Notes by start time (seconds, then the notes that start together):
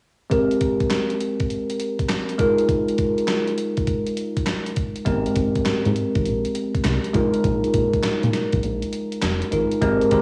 0.30 G#3 C4 G4 A#4, kick, closed hi-hat
0.51 closed hi-hat
0.61 kick, closed hi-hat
0.80 kick, closed hi-hat
0.90 snare, clap, closed hi-hat
1.10 closed hi-hat
1.21 closed hi-hat
1.40 kick, closed hi-hat
1.50 closed hi-hat
1.70 closed hi-hat
1.80 closed hi-hat
1.99 kick, closed hi-hat
2.09 snare, clap, closed hi-hat
2.29 closed hi-hat
2.38 G#3 D#4 F4 A#4, kick, closed hi-hat
2.58 closed hi-hat
2.69 kick, closed hi-hat
2.88 closed hi-hat
2.98 kick, closed hi-hat
3.18 closed hi-hat
3.28 snare, clap, closed hi-hat
3.48 closed hi-hat
3.58 closed hi-hat
3.77 kick, closed hi-hat
3.87 kick, closed hi-hat
4.07 closed hi-hat
4.17 closed hi-hat
4.37 kick, closed hi-hat
4.47 snare, clap, closed hi-hat
4.66 closed hi-hat
4.76 kick, closed hi-hat
4.96 closed hi-hat
5.05 G#1 G#3 B3 G4 A#4, kick, closed hi-hat
5.12 C4
5.26 closed hi-hat
5.36 G#1, kick, closed hi-hat
5.55 kick, closed hi-hat
5.66 G#2, snare, clap, closed hi-hat
5.85 G#2, closed hi-hat
5.96 closed hi-hat
6.15 G#1, kick, closed hi-hat
6.25 A#1, closed hi-hat
6.45 closed hi-hat
6.55 closed hi-hat
6.75 kick, closed hi-hat
6.84 C2, snare, clap, closed hi-hat
7.04 closed hi-hat
7.13 A#1 G#3 D#4 F4 A#4, kick, closed hi-hat
7.34 closed hi-hat
7.44 A#1, kick, closed hi-hat
7.64 closed hi-hat
7.74 A#1, kick, closed hi-hat
7.93 kick, closed hi-hat
8.03 A#2, snare, clap, closed hi-hat
8.23 A#2, closed hi-hat
8.33 snare, closed hi-hat
8.53 A#1, kick, closed hi-hat
8.63 A#1, closed hi-hat
8.82 closed hi-hat
8.93 closed hi-hat
9.12 closed hi-hat
9.22 F1, snare, clap, closed hi-hat
9.42 closed hi-hat
9.52 G#1 G#3 D#4 F4 A#4, closed hi-hat
9.72 closed hi-hat
9.82 G#1 G#3 C4 G4 A#4, kick, closed hi-hat
10.02 closed hi-hat
10.11 G#1 G#3 C4 G4 A#4, kick, closed hi-hat